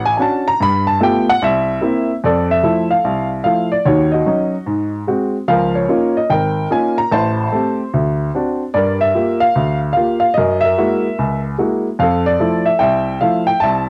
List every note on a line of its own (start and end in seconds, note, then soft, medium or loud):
0.00 0.14 A1 medium
0.05 0.16 G#5 loud
0.17 0.47 C#4 medium
0.17 0.48 D4 soft
0.17 0.48 F#4 medium
0.17 0.20 G#5 medium
0.22 0.46 A5 medium
0.48 0.61 A#5 loud
0.60 0.95 G2 medium
0.60 0.87 B5 loud
0.87 1.01 A5 medium
1.00 1.28 A3 medium
1.00 1.29 B3 medium
1.00 1.29 F4 medium
1.00 1.29 G4 medium
1.00 1.28 G5 medium
1.29 1.42 F#5 loud
1.42 1.77 C2 medium
1.42 2.13 E5 medium
1.81 2.10 A#3 medium
1.81 2.10 C4 medium
1.81 2.10 E4 medium
2.24 2.58 F2 medium
2.24 3.01 A4 medium
2.24 2.51 D5 medium
2.51 2.88 E5 medium
2.63 2.91 F3 medium
2.63 2.91 A3 soft
2.63 2.91 E4 medium
2.91 3.28 F5 medium
3.04 3.39 C2 medium
3.44 3.73 F3 soft
3.44 3.73 A3 soft
3.44 3.73 E4 medium
3.44 3.69 F5 medium
3.72 3.85 D5 medium
3.85 4.21 D#2 medium
3.85 4.20 D#3 medium
3.85 4.13 F#4 medium
3.85 4.10 C#5 medium
4.12 4.90 F#4 medium
4.12 4.89 D#5 medium
4.26 4.54 F#3 medium
4.26 4.54 C#4 medium
4.26 4.54 D#4 medium
4.66 5.02 G#2 medium
5.07 5.35 G#3 soft
5.07 5.36 C4 soft
5.07 5.36 F#4 medium
5.48 5.83 C#2 medium
5.48 5.83 F3 medium
5.48 6.27 A#4 medium
5.48 5.75 F5 medium
5.75 6.17 C#5 medium
5.89 6.17 A#3 medium
5.89 6.17 C#4 soft
5.89 6.17 D#4 medium
5.89 6.17 F4 medium
6.17 6.31 D#5 medium
6.30 6.65 G#1 medium
6.30 7.08 A#4 medium
6.30 6.68 G5 medium
6.71 6.98 A#3 medium
6.71 6.99 C#4 soft
6.71 6.99 D#4 soft
6.71 6.99 F4 medium
6.71 6.96 G#5 medium
6.98 7.11 A#5 medium
7.11 7.46 A1 medium
7.11 7.46 A2 medium
7.11 7.90 C5 medium
7.11 7.75 A5 medium
7.52 7.80 A3 medium
7.52 7.80 C4 medium
7.52 7.80 G4 medium
7.94 8.28 D2 medium
8.35 8.62 C4 soft
8.35 8.62 D4 soft
8.35 8.62 F#4 medium
8.74 9.09 G2 medium
8.74 9.09 G3 medium
8.74 9.53 A#4 medium
8.74 9.01 D5 medium
9.01 9.42 E5 medium
9.15 9.43 A#3 medium
9.15 9.43 F4 medium
9.15 9.43 G4 medium
9.40 9.79 F5 loud
9.55 9.91 D2 medium
9.93 10.24 A#3 soft
9.93 10.18 F5 medium
9.97 10.24 F4 soft
9.97 10.24 G4 medium
10.20 10.34 F5 medium
10.34 10.72 F#2 medium
10.34 10.63 A#4 medium
10.34 10.63 D#5 medium
10.61 11.41 A#4 medium
10.61 11.39 E5 medium
10.78 11.06 G#3 medium
10.78 11.06 A#3 medium
10.78 11.06 E4 soft
10.78 11.06 F#4 medium
11.18 11.53 C#2 medium
11.58 11.86 G#3 soft
11.58 11.87 A#3 soft
11.58 11.87 E4 soft
11.58 11.87 F#4 medium
11.99 12.34 F2 medium
11.99 12.78 A4 medium
11.99 12.27 F5 medium
12.26 12.68 D5 medium
12.40 12.68 F3 medium
12.40 12.68 A3 medium
12.40 12.68 E4 medium
12.66 12.81 E5 medium
12.79 13.16 C2 medium
12.79 13.59 E5 medium
12.79 13.18 G5 medium
13.21 13.49 F3 soft
13.21 13.50 A3 soft
13.21 13.50 E4 medium
13.21 13.48 F5 medium
13.47 13.62 G5 medium
13.60 13.89 C2 medium
13.60 13.89 E5 medium
13.60 13.89 A5 loud